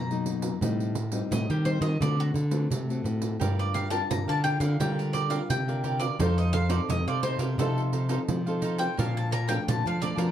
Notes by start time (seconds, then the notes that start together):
Already playing: F#2 B2 A#5
0.10 F#3 A#3 D#4, pandeiro
0.26 pandeiro
0.42 pandeiro
0.61 A2 G3 C4 D#4, pandeiro
0.80 pandeiro
0.95 pandeiro
1.12 G3 C4 D#4, pandeiro
1.31 A2 D#5, pandeiro
1.50 D#3 G4, pandeiro
1.65 G3 C4 D#4 C5, pandeiro
1.81 D#3 D#5, pandeiro
2.01 D3 A3 C4 F#4 D5, pandeiro
2.20 F#4, pandeiro
2.34 D3, pandeiro
2.51 A3 C4 F#4, pandeiro
2.71 A2 C3, pandeiro
2.89 A3 C4 F#4, pandeiro
3.04 A2, pandeiro
3.22 pandeiro
3.40 G2 G3 D4 F4 G4 A#4 D5 F5, pandeiro
3.59 D5, pandeiro
3.74 G4 A#4 D5 F5, pandeiro
3.90 D4 F4 G4 A#4 D5 F5 A5, pandeiro
4.10 G2 D3 A#5, pandeiro
4.28 D3 A#4 D5 F5 A5, pandeiro
4.44 D4 F4 G4 A#4 D5 F5 G5, pandeiro
4.60 D3 A#4 D5 F5, pandeiro
4.80 D3 G3 D4 F4 G4 A#4 D5 F5 G5, pandeiro
4.99 A#4, pandeiro
5.13 G4 A#4 D5 F5, pandeiro
5.30 D4 F4 G4 A#4 D5 F5, pandeiro
5.50 C3 D3 G5, pandeiro
5.68 D4 F4 A#4 D5 F5, pandeiro
5.83 G4 A#4 D5 F5, pandeiro
6.00 A#4 D5 F5, pandeiro
6.19 F2 F3 C4 D#4 A4 C5 F5, pandeiro
6.38 D#5, pandeiro
6.53 D#4 A4 C5 F5, pandeiro
6.69 C4 D#4 A4 C5 D5 F5, pandeiro
6.89 F2 C3 D#5, pandeiro
7.07 C3 A4 C5 D5 F5, pandeiro
7.23 C4 D#4 A4 C5 F5, pandeiro
7.39 C3 A4 A#4 C5 F5, pandeiro
7.58 C3 F3 C4 D#4 A4 C5 F5, pandeiro
7.78 pandeiro
7.92 D#4 A4 C5 F5, pandeiro
8.09 C4 D#4 A4 C5 F5, pandeiro
8.29 C3 F3, pandeiro
8.46 C4 D#4 A4 C5 F5, pandeiro
8.62 D#4 A4 C5 F5, pandeiro
8.78 A4 C5 F5 G5, pandeiro
8.97 A#2 F3 D4 A#4 D5 F5 A5, pandeiro
9.17 A5, pandeiro
9.31 A#4 D5 F5 A5 A#5, pandeiro
9.48 F3 A3 D4 A#4 D5 F5 G5 A5, pandeiro
9.68 F2 A#2 A5, pandeiro
9.85 F3 D5 F5 A5, pandeiro
10.00 F3 A3 D4 A#4 D5 F5 A5, pandeiro
10.16 F3 A#4 D5 F5 A5, pandeiro